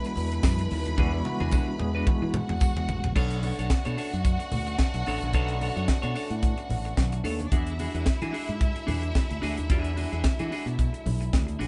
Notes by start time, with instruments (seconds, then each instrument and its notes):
Already playing: french horn section D3 F#3 G#3 E4, tine electric piano E3 G#3 B3 D4 E4 F#4, string section B4 B5
0.05 muted clean electric guitar stroke, closed hi-hat
0.16 fingered electric bass E2, open hi-hat, muted conga
0.32 muted clean electric guitar stroke, closed hi-hat
0.43 fingered electric bass F#2, muted clean electric guitar stroke, kick, snare, closed hi-hat, tambourine, high conga
0.59 muted clean electric guitar stroke, closed hi-hat
0.71 fingered electric bass D#2, open hi-hat, high conga
0.85 muted clean electric guitar stroke, closed hi-hat, high conga
0.97 fingered electric bass E2, tine electric piano E3 G#3 B3 D4 F#4, clean electric guitar D4 F#4 G#4, kick, high tom, muted conga
1.13 muted clean electric guitar stroke
1.24 tine electric piano E3 G#3 B3 D4 F#4, muted clean electric guitar stroke, high tom, muted conga
1.40 fingered electric bass E2, clean electric guitar D4 F#4 G#4, high tom
1.51 clean electric guitar D4 F#4 G#4, kick, mid tom, tambourine, high conga
1.68 muted clean electric guitar stroke
1.78 fingered electric bass E2, tine electric piano E3 G#3 B3 D4 G#4, muted clean electric guitar stroke, mid tom
1.95 clean electric guitar D4 F#4 B4
2.06 tine electric piano E3 G#3 B3 D4 F#4, muted clean electric guitar stroke, kick, mid tom, muted conga
2.22 fingered electric bass E3, muted clean electric guitar stroke
2.34 string section F#4 F#5, mid tom, muted conga, low conga
2.49 fingered electric bass E2, muted clean electric guitar stroke, mid tom
2.60 muted clean electric guitar stroke, kick, floor tom, tambourine, high conga
2.77 fingered electric bass E2, muted clean electric guitar stroke, floor tom
2.88 fingered electric bass A1, floor tom, high conga
3.04 fingered electric bass A#1, muted clean electric guitar stroke, floor tom, high conga
3.15 fingered electric bass B1, french horn section A3 B3 C#4 D4, clean electric guitar D4 A4 C#5, string section F#4 F#5, kick, crash, muted conga
3.30 closed hi-hat
3.43 clean electric guitar D4 A4 C#5, open hi-hat, muted conga
3.59 fingered electric bass B1, clean electric guitar D4 A4 C#5, closed hi-hat
3.70 kick, snare, closed hi-hat, high conga
3.85 fingered electric bass B2, clean electric guitar D4 A4 C#5, closed hi-hat
3.97 clean electric guitar D4 A4 C#5, open hi-hat
4.12 fingered electric bass F#2, muted clean electric guitar stroke, closed hi-hat
4.25 muted clean electric guitar stroke, kick, closed hi-hat, muted conga
4.39 muted clean electric guitar stroke, closed hi-hat
4.52 fingered electric bass D2, open hi-hat, muted conga, low conga
4.67 muted clean electric guitar stroke, closed hi-hat
4.79 kick, snare, closed hi-hat, high conga
4.94 fingered electric bass B1, muted clean electric guitar stroke, closed hi-hat
5.06 fingered electric bass A1, clean electric guitar D4 A4 C#5, open hi-hat
5.21 fingered electric bass A#1, muted clean electric guitar stroke, closed hi-hat, high conga
5.33 fingered electric bass B1, clean electric guitar D4 A4 C#5, kick, closed hi-hat, muted conga
5.48 closed hi-hat
5.61 clean electric guitar D4 A4 C#5, open hi-hat, muted conga
5.76 fingered electric bass F#2, clean electric guitar D4 A4 C#5, closed hi-hat
5.88 muted clean electric guitar stroke, kick, snare, closed hi-hat, high conga
6.02 fingered electric bass B2, clean electric guitar D4 A4 C#5, closed hi-hat
6.15 clean electric guitar D4 A4 C#5, open hi-hat
6.30 fingered electric bass A2, muted clean electric guitar stroke, closed hi-hat
6.43 muted clean electric guitar stroke, kick, closed hi-hat, muted conga
6.57 muted clean electric guitar stroke, closed hi-hat
6.69 fingered electric bass A1, open hi-hat, muted conga, low conga
6.85 muted clean electric guitar stroke, closed hi-hat
6.97 fingered electric bass B1, kick, snare, closed hi-hat, high conga
7.12 muted clean electric guitar stroke, closed hi-hat
7.24 fingered electric bass D#2, string section A3 A4, clean electric guitar D4 A4 C#5, open hi-hat
7.33 string section B3 B4
7.39 string section C#4 C#5, muted clean electric guitar stroke, closed hi-hat, high conga
7.46 string section D4 D5
7.51 fingered electric bass E2, french horn section D3 F#3 G#3 E4, clean electric guitar D4 F#4 G#4, string section E4 E5, kick, closed hi-hat, muted conga
7.67 closed hi-hat
7.79 clean electric guitar D4 F#4 G#4, open hi-hat, muted conga
7.94 fingered electric bass E2, clean electric guitar D4 F#4 G#4, closed hi-hat
8.06 muted clean electric guitar stroke, kick, snare, closed hi-hat, high conga
8.22 fingered electric bass E3, clean electric guitar D4 F#4 G#4, closed hi-hat
8.33 clean electric guitar D4 F#4 G#4, open hi-hat
8.48 fingered electric bass G#2, muted clean electric guitar stroke, closed hi-hat
8.60 muted clean electric guitar stroke, kick, closed hi-hat, muted conga
8.76 muted clean electric guitar stroke, closed hi-hat
8.87 fingered electric bass E2, clean electric guitar D4 F#4 G#4, open hi-hat, muted conga, low conga
9.02 muted clean electric guitar stroke, closed hi-hat
9.15 kick, snare, closed hi-hat, high conga
9.30 fingered electric bass D2, muted clean electric guitar stroke, closed hi-hat
9.42 fingered electric bass D2, clean electric guitar D4 F#4 G#4, snare, open hi-hat
9.57 fingered electric bass D#2, muted clean electric guitar stroke, closed hi-hat, high conga
9.70 fingered electric bass E2, clean electric guitar D4 F#4 G#4, french horn section E4, kick, closed hi-hat, muted conga
9.84 closed hi-hat
9.96 clean electric guitar D4 F#4 G#4, open hi-hat, muted conga
10.12 fingered electric bass E2, clean electric guitar D4 F#4 G#4, closed hi-hat
10.24 muted clean electric guitar stroke, muted fingered electric bass stroke, kick, snare, closed hi-hat, high conga
10.39 fingered electric bass E3, clean electric guitar D4 F#4 G#4, closed hi-hat
10.51 clean electric guitar D4 F#4 G#4, open hi-hat
10.66 fingered electric bass B2, muted clean electric guitar stroke, closed hi-hat
10.78 muted clean electric guitar stroke, kick, closed hi-hat, muted conga
10.93 muted clean electric guitar stroke, closed hi-hat
11.06 fingered electric bass B1, open hi-hat, muted conga, low conga
11.21 muted clean electric guitar stroke, closed hi-hat
11.33 fingered electric bass D2, kick, snare, closed hi-hat, high conga
11.47 muted clean electric guitar stroke, closed hi-hat
11.59 fingered electric bass A#1, clean electric guitar D4 F#4 G#4, snare, open hi-hat